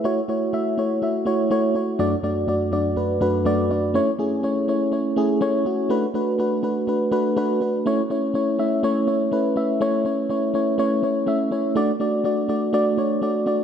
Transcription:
X:1
M:4/4
L:1/8
Q:1/4=123
K:A
V:1 name="FM electric piano"
[A,EFc] [A,EFc] [A,EFe] [A,EFc] [A,EFe] [A,EFc] [A,EFc] [A,EFc] | [F,,A,DFd] [F,,A,DFd] [F,,A,DFd] [F,,A,DFd] [F,,A,DFB] [F,,A,DFB] [F,,A,DFd] [F,,A,DFd] | [A,CEc] [A,CEG] [A,CEc] [A,CEc] [A,CEc] [A,CEG] [A,CEc] [A,CEF] | [A,DFB] [A,DFB] [A,DFB] [A,DFB] [A,DFB] [A,DFB] [A,DFB] [A,DFB] |
[A,CEc] [A,CEc] [A,CEc] [A,CEe] [A,CEc] [A,CEc] [A,CEB] [A,CEe] | [A,CEc] [A,CEc] [A,CEc] [A,CEc] [A,CEc] [A,CEc] [A,CEe] [A,CEc] | [A,DFd] [A,DFd] [A,DFd] [A,DFd] [A,DFd] [A,DFc] [A,DFd] [A,DFd] |]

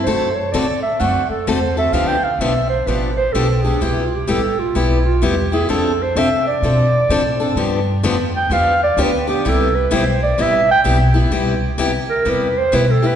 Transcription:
X:1
M:4/4
L:1/8
Q:"Swing" 1/4=128
K:C
V:1 name="Clarinet"
c _d =d e ^f A c e | (3f g f e c B c A _A | (3G F G A F E F G _A | A c e d4- d |
z3 g f d B G | A B c d e g z2 | z3 _B =B c (3B A B |]
V:2 name="Steel-string acoustic guitar"
[D,A,C^FA] z [D,A,CFA] z [D,A,CFA] z [D,A,CFA] [CFA] | [D,F,B,DG] z [D,F,B,DG] z [D,F,B,DG] z [D,F,B,DG] [B,DG] | [C,G,B,EG] z [C,G,B,EG] z [C,G,B,EG] z [C,G,B,EG] [B,EG] | [F,CDA] z [F,CDA] z [F,CDA] z [F,CDA] [CDA] |
[D,F,B,DG] z [D,F,B,DG] z [D,F,B,DG] z [D,F,B,DG] [B,DG] | [C,G,B,EG] z [C,G,B,EG] z [C,G,B,EG] z [C,G,B,EG] [B,EG] | [C,G,B,EG] z [C,G,B,EG] z [C,G,B,EG] z [C,G,B,EG] [B,EG] |]
V:3 name="Upright bass" clef=bass
^F,,2 A,,2 F,, z E,,2 | D,,2 B,,,2 A,,,2 B,,,2 | C,,2 A,,,2 B,,,2 E,,2 | F,,2 C,2 B,,2 A,,2 |
G,,2 F,,2 E,,2 D,,2 | C,,2 B,,,2 A,,,2 B,,,2 | C,,2 D,,2 E,,2 B,,2 |]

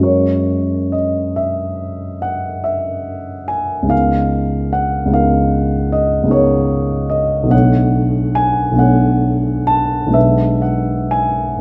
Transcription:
X:1
M:9/8
L:1/8
Q:3/8=47
K:F#mix
V:1 name="Grand piano"
c2 d e2 f e2 g | ^e2 f e2 d c2 d | f2 g f2 =a e f g |]
V:2 name="Grand piano"
[F,,G,CFA]8- [F,,G,CFA] | [C,,G,B,DA]3 [C,,G,B,DA]3 [C,,G,B,DA]3 | [B,,,=A,B,=Dc]3 [B,,,A,B,Dc]3 [B,,,G,B,DB]3 |]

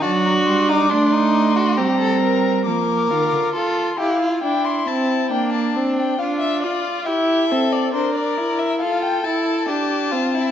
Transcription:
X:1
M:4/4
L:1/16
Q:1/4=69
K:Gm
V:1 name="Violin"
a b c' d' c'4 b4 d'4 | [K:F] c'2 f2 g c' a2 g a2 g f e d2 | e3 d c d2 e f g a2 a4 |]
V:2 name="Violin"
^F3 E D E2 F G A B2 B4 | [K:F] A2 G F E4 D4 F4 | G2 A2 B4 A4 G2 F E |]
V:3 name="Viola"
D8 C4 B,2 F2 | [K:F] F2 E2 D2 C2 B,2 C2 D2 F2 | E2 C2 D2 E2 F2 E2 D2 C2 |]
V:4 name="Cello" clef=bass
^F,2 G,2 A,4 G,4 =F,2 E, D, | [K:F] z16 | z16 |]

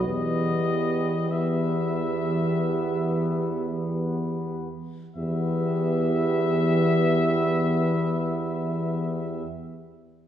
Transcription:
X:1
M:4/4
L:1/8
Q:1/4=47
K:Em
V:1 name="Cornet"
^d2 e4 z2 | e8 |]
V:2 name="French horn section"
G2 G4- G z | G8 |]
V:3 name="Trombone section"
B,2 B,4- B, z | B,8 |]
V:4 name="Euphonium" clef=bass
E,2 E,4- E, z | E,8 |]
V:5 name="Tuba" clef=bass
E,,6- E,, z | E,,8 |]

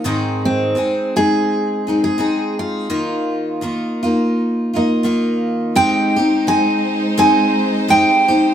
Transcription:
X:1
M:4/4
L:1/16
Q:"Swing" 1/4=84
K:Ab
V:1 name="Steel-string acoustic guitar"
z2 C4 A4- A A3 F2- | F8- F2 e6 | g4 a4 a4 g4 |]
V:2 name="String section"
z16 | z16 | [A,Ec]16 |]
V:3 name="Steel-string acoustic guitar"
[A,,E,A,CEA]4 [A,CEA]2 [A,CEA]4 [A,CEA]2 [A,CEA]4 | [E,B,EF]4 [E,B,EF]2 [B,EF]4 [B,EF]2 [E,B,EF]4 | [A,CEG]2 [CEG]2 [A,CE]4 [A,CE]4 [A,CEG]2 [CEG]2 |]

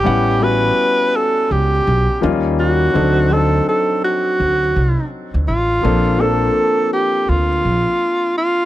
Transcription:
X:1
M:4/4
L:1/16
Q:"Swing 16ths" 1/4=83
K:Dphr
V:1 name="Tenor saxophone"
G2 =B4 A2 G4 z2 _G2- | _G2 A2 A2 ^F6 z2 =F2- | F2 A4 G2 F6 F2 |]
V:2 name="Grand piano"
[G,=B,^C=E^f]2 [G,B,CE^F]6- [G,B,CEF] z3 [=F,G,_B,_D_E=F]4 | [^F,CDEA]2 [F,CDEA]6- [F,CDEA] z6 z | [F,B,CDA]2 [F,B,CDA]6- [F,B,CDA] z6 z |]
V:3 name="Upright bass" clef=bass
A,,,4 z4 ^C,,2 =B,,, z E,,4 | D,,4 z4 D,,2 C,, z2 D,, A,,,2 | B,,,4 z4 D,,2 B,,, z4 z |]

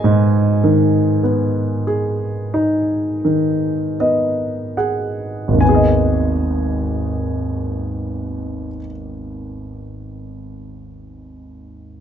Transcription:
X:1
M:4/4
L:1/8
Q:1/4=38
K:G#m
V:1 name="Grand piano"
g6- g z | g8 |]
V:2 name="Grand piano"
[G,,D,B,G] D, B, G D D, [B,d] [Gf] | [G,,,D,,D,B,Gd]8 |]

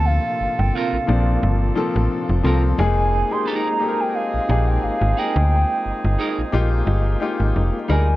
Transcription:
X:1
M:4/4
L:1/16
Q:"Swing 16ths" 1/4=88
K:Fdor
V:1 name="Soft synth lead"
f3 g f6 z6 | a3 c' b3 g f3 g f2 g2- | g6 z8 a2 |]
V:2 name="Clean electric guitar"
z4 [CFB]2 z8 [CFB] z | z4 [EAB]2 z8 [EAB] z | z4 [EAB]2 z8 [EAB] z |]
V:3 name="Horn section"
[DF=A]12- [DFA]2 z2 | [CEA]16- | [CEA]12- [CEA]2 z2 |]
V:4 name="Upright piano"
z6 [F,B,CD]3 z [F,B,C=A]3 z [F,B,CA]2 | [A,B,EA]2 z [B,EGA]2 z [B,EG=AB]3 z [B,EG_A]6 | z6 [B,EFG]3 z [B,EFG]3 z [G,B,EB]2 |]
V:5 name="Tonewheel organ"
F16- | F16- | F16 |]
V:6 name="Tonewheel organ"
[B,,C,B,]16 | [A,B,E]16- | [A,B,E]16 |]
V:7 name="FM bass" clef=bass
D,, z G,,, G,,, z B,,, B,,,2 G,,,2 z =A,,, z F,,, C,,2 | F,,,3 z6 B,,, B,,,2 A,,, A,,, z D,,- | D,, z G,,, G,,, z B,,, B,,,2 G,,,2 z A,,, F,,, z D,,2 |]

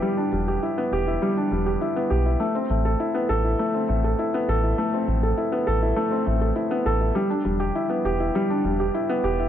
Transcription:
X:1
M:4/4
L:1/16
Q:1/4=101
K:Ephr
V:1 name="Felt piano"
G, D G, G E B, G E G, D G, G E B, G E | A, C A, A E B, A E A, C A, A E B, A E | A, C A, A E B, A E A, C A, A E B, A E | G, D G, G E B, G E G, D G, G E B, G E |]
V:2 name="Analog synth bass" clef=bass
z2 E,,,2 z2 E,,,2 z2 E,,,2 z2 B,,,2 | z2 A,,,2 z2 A,,,2 z2 A,,,2 z2 A,,,2 | z2 A,,,2 z2 A,,,2 z2 A,,,2 z2 A,,,2 | z2 E,,,2 z2 E,,,2 z2 E,,,2 z2 E,,,2 |]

